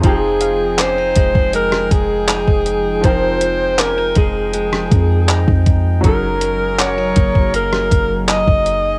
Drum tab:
HH |x-x-x-x-x-x-x-x-|x-x-x-x-x-x-x-x-|x-x-x-x-x-x-x-x-|
CP |----x-------x---|----x-------x---|----x-------x---|
SD |---------r------|---------r------|---------r------|
BD |o-----oo--o--o--|o-----o---o--oo-|o-----oo--o--o--|